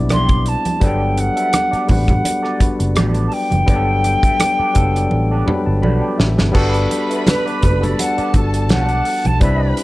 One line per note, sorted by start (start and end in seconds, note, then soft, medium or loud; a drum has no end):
0.00 0.54 B1 medium
0.00 0.80 G3 medium
0.00 0.44 B3 medium
0.00 0.84 C4 medium
0.00 0.82 D4 medium
0.00 0.84 E4 medium
0.00 0.83 D5 medium
0.09 0.43 B3 medium
0.09 0.43 E4 medium
0.09 0.44 G4 medium
0.09 0.44 D5 medium
0.09 0.50 C6 loud
0.09 cross-stick medium
0.09 closed hi-hat medium
0.09 high conga medium
0.29 kick medium
0.29 closed hi-hat soft
0.46 0.86 A5 medium
0.46 muted clean electric guitar stroke soft
0.46 closed hi-hat medium
0.65 muted clean electric guitar stroke soft
0.65 closed hi-hat soft
0.65 high conga medium
0.80 1.28 G1 loud
0.80 1.53 F#3 medium
0.80 1.51 G3 loud
0.80 1.00 B3 medium
0.80 1.52 B3 medium
0.80 1.52 D4 medium
0.80 1.01 F#4 medium
0.80 1.00 A4 medium
0.80 1.53 A4 medium
0.80 1.01 D5 medium
0.80 kick loud
0.80 closed hi-hat medium
0.80 muted conga soft
0.85 1.21 G5 medium
1.17 1.90 F#5 loud
1.17 muted clean electric guitar stroke soft
1.17 closed hi-hat medium
1.17 muted conga soft
1.36 1.50 B3 soft
1.36 1.50 F#4 soft
1.36 1.49 A4 soft
1.36 1.49 E5 medium
1.36 closed hi-hat soft
1.53 muted clean electric guitar stroke soft
1.53 cross-stick medium
1.53 closed hi-hat medium
1.53 high conga medium
1.71 1.86 B3 medium
1.71 1.87 F#4 medium
1.71 1.87 A4 medium
1.71 1.88 D5 medium
1.71 muted fingered electric bass stroke soft
1.71 closed hi-hat soft
1.87 2.20 A1 medium
1.87 2.36 G3 medium
1.87 2.36 B3 medium
1.87 2.37 D4 medium
1.87 2.37 F#4 medium
1.87 2.38 B4 medium
1.87 2.93 F#5 medium
1.87 muted clean electric guitar stroke soft
1.87 kick medium
1.87 open hi-hat soft
1.87 low conga medium
2.08 muted clean electric guitar stroke soft
2.08 kick medium
2.08 closed hi-hat soft
2.08 low conga medium
2.23 muted clean electric guitar stroke soft
2.23 closed hi-hat loud
2.23 muted conga soft
2.43 2.59 B3 medium
2.43 2.59 F#4 medium
2.43 2.60 A4 medium
2.43 2.59 D5 medium
2.43 cross-stick soft
2.59 3.30 G3 medium
2.59 3.31 B3 medium
2.59 3.31 D4 medium
2.59 3.32 F#4 medium
2.59 3.32 B4 medium
2.59 muted clean electric guitar stroke soft
2.59 muted fingered electric bass stroke soft
2.59 kick medium
2.59 closed hi-hat medium
2.59 muted conga soft
2.79 2.94 F#1 medium
2.79 muted clean electric guitar stroke soft
2.79 closed hi-hat soft
2.95 3.27 A1 medium
2.95 3.29 B3 medium
2.95 3.30 F#4 medium
2.95 3.30 A4 medium
2.95 3.30 D5 medium
2.95 cross-stick loud
2.95 closed hi-hat medium
2.95 high conga medium
3.15 closed hi-hat soft
3.27 3.35 A5 medium
3.32 5.84 G5 loud
3.32 muted clean electric guitar stroke soft
3.32 open hi-hat soft
3.50 3.66 F#1 medium
3.50 muted clean electric guitar stroke soft
3.50 closed hi-hat soft
3.50 high conga medium
3.66 4.15 G1 medium
3.66 4.39 F#3 medium
3.66 4.38 G3 medium
3.66 4.38 B3 medium
3.66 3.87 B3 medium
3.66 4.39 D4 medium
3.66 3.87 F#4 medium
3.66 3.76 G4 medium
3.66 3.87 A4 medium
3.66 3.87 D5 medium
3.66 kick loud
3.66 closed hi-hat medium
3.66 muted conga soft
3.76 4.43 A4 loud
4.04 muted clean electric guitar stroke soft
4.04 closed hi-hat medium
4.04 muted conga soft
4.23 4.37 B3 soft
4.23 4.36 F#4 soft
4.23 4.36 A4 medium
4.23 4.36 E5 medium
4.23 kick medium
4.23 closed hi-hat soft
4.40 muted clean electric guitar stroke soft
4.40 cross-stick loud
4.40 closed hi-hat medium
4.40 high conga medium
4.59 4.75 B3 medium
4.59 4.75 F#4 medium
4.59 4.75 A4 medium
4.59 4.75 D5 medium
4.59 muted fingered electric bass stroke soft
4.74 5.06 F#1 medium
4.74 5.24 F#3 medium
4.74 5.23 G3 medium
4.74 5.23 B3 medium
4.74 5.23 D4 medium
4.74 5.24 A4 medium
4.74 muted clean electric guitar stroke soft
4.74 kick medium
4.74 closed hi-hat medium
4.96 muted clean electric guitar stroke soft
4.96 cross-stick soft
4.96 closed hi-hat soft
5.11 5.42 A1 medium
5.11 muted clean electric guitar stroke soft
5.11 muted conga soft
5.31 5.47 B3 medium
5.31 5.47 F#4 medium
5.31 5.47 A4 medium
5.31 5.47 D5 medium
5.46 6.18 F#3 medium
5.46 6.17 G3 medium
5.46 6.18 B3 medium
5.46 6.18 D4 medium
5.46 6.19 B4 medium
5.46 5.65 B5 medium
5.46 muted clean electric guitar stroke soft
5.46 muted conga medium
5.46 low conga medium
5.66 5.81 G1 medium
5.66 5.82 A5 medium
5.66 muted clean electric guitar stroke soft
5.82 6.00 B1 medium
5.82 6.16 B3 medium
5.82 6.17 F#4 medium
5.82 6.17 A4 medium
5.82 6.17 D5 medium
5.82 6.01 B5 medium
5.82 high conga medium
6.02 6.17 G5 medium
6.18 6.40 A1 medium
6.18 6.52 E5 medium
6.18 muted clean electric guitar stroke soft
6.18 snare medium
6.38 6.53 G1 medium
6.38 muted clean electric guitar stroke soft
6.38 snare medium
6.38 high conga medium
6.52 6.85 G1 medium
6.52 7.36 G3 loud
6.52 7.37 B3 loud
6.52 6.74 B3 medium
6.52 7.37 D4 loud
6.52 7.38 F#4 loud
6.52 6.74 F#4 medium
6.52 7.38 A4 loud
6.52 7.96 B4 medium
6.52 7.96 B5 medium
6.52 kick loud
6.52 crash medium
6.52 muted conga soft
6.56 6.74 A4 medium
6.56 6.74 D5 medium
6.74 closed hi-hat soft
6.90 muted clean electric guitar stroke soft
6.90 closed hi-hat medium
6.90 muted conga soft
7.10 7.23 B3 soft
7.10 7.23 F#4 soft
7.10 7.23 A4 soft
7.10 7.22 E5 medium
7.10 closed hi-hat medium
7.27 7.85 B4 medium
7.27 muted clean electric guitar stroke soft
7.27 snare loud
7.27 closed hi-hat loud
7.27 high conga medium
7.45 7.62 B3 medium
7.45 7.62 F#4 medium
7.45 7.62 A4 medium
7.45 7.62 D5 medium
7.45 closed hi-hat soft
7.63 7.93 F#1 medium
7.63 muted clean electric guitar stroke soft
7.63 kick medium
7.63 closed hi-hat medium
7.63 low conga medium
7.79 8.16 G3 medium
7.79 8.16 B3 medium
7.79 8.17 D4 medium
7.79 8.17 F#4 medium
7.79 8.18 A4 medium
7.79 muted clean electric guitar stroke soft
7.79 low conga medium
7.84 8.01 D5 medium
7.84 closed hi-hat soft
7.98 9.39 A4 medium
7.98 8.35 F#5 medium
7.98 9.39 A5 medium
7.98 muted clean electric guitar stroke soft
7.98 closed hi-hat loud
7.98 muted conga soft
8.18 8.33 B3 medium
8.18 8.34 F#4 medium
8.18 8.34 A4 medium
8.18 8.34 D5 medium
8.18 muted fingered electric bass stroke soft
8.18 closed hi-hat soft
8.33 8.71 G1 medium
8.33 9.04 G3 medium
8.33 9.04 B3 medium
8.33 9.05 D4 medium
8.33 9.05 F#4 medium
8.33 9.05 A4 medium
8.33 kick medium
8.33 closed hi-hat medium
8.33 muted conga soft
8.54 muted clean electric guitar stroke soft
8.54 closed hi-hat medium
8.69 9.01 B1 medium
8.69 8.84 A#3 medium
8.69 8.85 F4 medium
8.69 8.85 G#4 medium
8.69 8.85 C#5 medium
8.69 9.28 F#5 medium
8.69 snare medium
8.69 closed hi-hat medium
8.69 high conga medium
8.84 9.03 B3 medium
8.84 9.04 F#4 medium
8.84 9.04 A4 medium
8.84 9.04 D5 medium
8.89 closed hi-hat soft
9.05 muted clean electric guitar stroke soft
9.05 open hi-hat medium
9.25 9.39 B1 medium
9.25 9.42 A5 loud
9.25 muted clean electric guitar stroke soft
9.25 closed hi-hat soft
9.25 high conga medium
9.40 9.72 C2 loud
9.40 9.83 G3 medium
9.40 9.60 B3 medium
9.40 9.83 C4 medium
9.40 9.83 D4 medium
9.40 9.60 E4 medium
9.40 9.83 E4 medium
9.40 9.60 G4 medium
9.40 9.83 B4 medium
9.40 9.83 B4 loud
9.40 9.61 D5 medium
9.40 9.75 E5 medium
9.40 9.83 B5 medium
9.40 kick loud
9.40 closed hi-hat medium
9.40 muted conga soft
9.77 muted clean electric guitar stroke soft
9.77 closed hi-hat medium